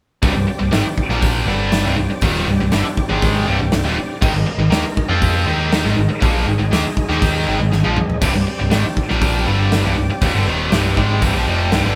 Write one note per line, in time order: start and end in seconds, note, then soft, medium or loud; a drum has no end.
0.22 0.34 C1 loud
0.22 0.33 C2 loud
0.22 0.33 G2 loud
0.22 4.18 C4 medium
0.22 4.18 G4 medium
0.22 4.18 D5 medium
0.22 kick loud
0.22 open hi-hat medium
0.34 0.47 C1 medium
0.34 0.46 C2 medium
0.34 0.47 G2 medium
0.48 muted distorted electric guitar stroke medium
0.48 muted picked electric bass stroke soft
0.59 0.72 C1 medium
0.59 0.71 C2 medium
0.59 0.72 G2 medium
0.71 0.84 G#1 medium
0.71 0.84 G#2 medium
0.71 0.84 D#3 loud
0.71 snare loud
0.71 open hi-hat medium
0.84 muted distorted electric guitar stroke medium
0.84 muted picked electric bass stroke soft
0.98 kick medium
1.09 1.44 A#1 loud
1.09 1.46 A#2 medium
1.09 1.47 F3 medium
1.09 1.47 A#3 medium
1.09 snare soft
1.22 kick loud
1.22 open hi-hat medium
1.46 1.82 G1 loud
1.46 1.83 G2 medium
1.46 1.84 D3 loud
1.46 1.84 G3 loud
1.72 snare loud
1.72 open hi-hat medium
1.84 1.96 C1 loud
1.84 1.95 C2 medium
1.84 1.96 G2 loud
1.84 snare soft
1.97 2.09 C1 medium
1.97 2.09 C2 medium
1.97 2.10 G2 medium
2.10 muted distorted electric guitar stroke medium
2.10 muted picked electric bass stroke soft
2.21 2.45 D#1 loud
2.21 2.46 D#2 medium
2.21 2.47 A#2 loud
2.21 2.47 D#3 loud
2.21 kick loud
2.21 open hi-hat medium
2.48 2.59 C1 medium
2.48 2.59 C2 medium
2.48 2.59 G2 medium
2.60 2.72 C1 medium
2.60 2.71 C2 medium
2.60 2.71 G2 medium
2.72 2.84 G1 medium
2.72 2.84 G2 medium
2.72 2.84 D3 loud
2.72 snare loud
2.72 open hi-hat medium
2.84 muted distorted electric guitar stroke medium
2.84 muted picked electric bass stroke soft
2.97 kick medium
3.09 3.45 G#1 medium
3.09 3.46 G#2 medium
3.09 3.46 D#3 medium
3.09 3.46 G#3 loud
3.22 kick loud
3.22 open hi-hat medium
3.47 3.59 C1 medium
3.47 3.58 C2 medium
3.47 3.59 G2 loud
3.59 3.72 C1 medium
3.59 3.71 C2 medium
3.59 3.71 G2 medium
3.72 3.84 C1 medium
3.72 3.83 C2 medium
3.72 3.84 G2 medium
3.72 snare loud
3.72 open hi-hat medium
3.84 3.97 D#1 medium
3.84 3.96 D#2 medium
3.84 3.96 A#2 loud
3.84 snare soft
4.21 4.34 G#1 loud
4.21 4.33 G#2 loud
4.21 4.33 D#3 loud
4.21 8.18 G#3 medium
4.21 8.19 D#4 medium
4.21 6.20 A#4 medium
4.21 kick loud
4.21 crash loud
4.34 4.45 G#1 medium
4.34 4.45 G#2 medium
4.34 4.47 D#3 medium
4.46 muted picked electric bass stroke soft
4.46 muted distorted electric guitar stroke medium
4.58 4.69 G#1 medium
4.58 4.72 G#2 medium
4.58 4.69 D#3 medium
4.70 4.82 D#2 medium
4.70 4.83 D#3 loud
4.70 4.83 A#3 loud
4.70 snare loud
4.70 open hi-hat medium
4.84 muted picked electric bass stroke soft
4.84 muted distorted electric guitar stroke medium
4.97 kick medium
5.09 5.44 F2 medium
5.09 5.46 F3 medium
5.09 5.46 C4 medium
5.09 5.46 F4 loud
5.22 kick loud
5.22 open hi-hat medium
5.46 5.82 D#2 medium
5.46 5.83 D#3 medium
5.46 5.84 A#3 loud
5.46 5.84 D#4 loud
5.72 snare loud
5.72 open hi-hat medium
5.84 5.96 G#1 medium
5.84 5.96 G#2 medium
5.84 5.96 D#3 loud
5.84 snare soft
5.97 6.08 G#1 medium
5.97 6.09 G#2 medium
5.97 6.10 D#3 medium
6.09 muted picked electric bass stroke soft
6.09 muted distorted electric guitar stroke medium
6.21 6.45 A#1 medium
6.21 6.46 A#2 medium
6.21 6.46 F3 loud
6.21 6.46 A#3 loud
6.21 8.20 G#4 medium
6.21 kick loud
6.21 open hi-hat medium
6.47 6.58 G#1 medium
6.47 6.58 G#2 medium
6.47 6.58 D#3 medium
6.59 6.71 G#1 medium
6.59 6.72 G#2 medium
6.59 6.71 D#3 medium
6.72 6.83 D#2 medium
6.72 6.84 D#3 medium
6.72 6.84 A#3 loud
6.72 snare loud
6.72 open hi-hat medium
6.85 muted picked electric bass stroke soft
6.85 muted distorted electric guitar stroke medium
6.97 kick medium
7.09 7.44 D#2 medium
7.09 7.46 D#3 medium
7.09 7.46 A#3 loud
7.09 7.47 D#4 loud
7.09 snare soft
7.22 kick loud
7.22 open hi-hat medium
7.47 7.59 G#1 loud
7.47 7.58 G#2 medium
7.47 7.58 D#3 loud
7.59 7.72 G#1 medium
7.59 7.70 G#2 medium
7.59 7.70 D#3 medium
7.72 7.84 G#1 medium
7.72 7.83 G#2 medium
7.72 7.84 D#3 medium
7.72 snare medium
7.83 7.96 A#1 medium
7.83 7.96 A#2 medium
7.83 7.96 F3 medium
7.97 mid tom loud
8.10 floor tom medium
8.21 8.33 C1 medium
8.21 8.33 C2 loud
8.21 8.33 G2 loud
8.21 11.95 C4 medium
8.21 11.95 G4 medium
8.21 11.95 D5 medium
8.21 kick loud
8.21 open hi-hat medium
8.21 crash loud
8.34 8.46 C1 medium
8.34 8.46 C2 medium
8.34 8.47 G2 medium
8.47 muted distorted electric guitar stroke medium
8.47 muted picked electric bass stroke soft
8.59 8.72 C1 medium
8.59 8.71 C2 medium
8.59 8.71 G2 medium
8.71 8.85 G#1 medium
8.71 8.83 G#2 medium
8.71 8.83 D#3 loud
8.71 snare loud
8.71 open hi-hat medium
8.84 muted distorted electric guitar stroke medium
8.84 muted picked electric bass stroke soft
8.97 kick medium
9.09 9.45 A#1 medium
9.09 9.45 A#2 medium
9.09 9.46 F3 medium
9.09 9.46 A#3 medium
9.09 snare soft
9.22 kick loud
9.22 open hi-hat medium
9.45 9.82 G1 loud
9.45 9.83 G2 medium
9.45 9.83 D3 medium
9.45 9.83 G3 loud
9.72 snare loud
9.72 open hi-hat medium
9.84 9.96 C1 loud
9.84 9.95 C2 medium
9.84 9.95 G2 loud
9.96 10.09 C1 medium
9.96 10.08 C2 medium
9.96 10.09 G2 medium
10.10 muted distorted electric guitar stroke medium
10.10 muted picked electric bass stroke soft
10.21 10.34 D#1 loud
10.21 10.33 D#2 loud
10.21 10.34 A#2 loud
10.21 kick loud
10.21 open hi-hat medium
10.34 10.46 G1 loud
10.34 10.46 G2 medium
10.34 10.46 D3 loud
10.47 10.70 D#1 loud
10.47 10.71 D#2 medium
10.47 10.71 A#2 medium
10.47 10.72 D#3 loud
10.72 10.96 C1 medium
10.72 10.96 C2 loud
10.72 10.96 G2 loud
10.72 10.96 C3 loud
10.72 snare loud
10.72 open hi-hat medium
10.97 11.20 G#1 loud
10.97 11.21 G#2 medium
10.97 11.22 D#3 loud
10.97 11.22 G#3 loud
10.97 kick medium
11.22 11.34 C1 medium
11.22 11.34 C2 medium
11.22 11.34 G2 loud
11.22 kick loud
11.22 open hi-hat medium
11.35 11.47 A#1 medium
11.35 11.46 A#2 medium
11.35 11.46 F3 loud
11.47 11.71 F1 medium
11.47 11.71 F2 loud
11.47 11.71 C3 medium
11.47 11.72 F3 loud
11.72 11.84 C1 loud
11.72 11.84 C2 medium
11.72 11.84 G2 loud
11.72 snare loud
11.72 open hi-hat medium
11.85 11.95 G1 loud
11.85 11.95 G2 medium
11.85 11.95 D3 loud
11.85 snare soft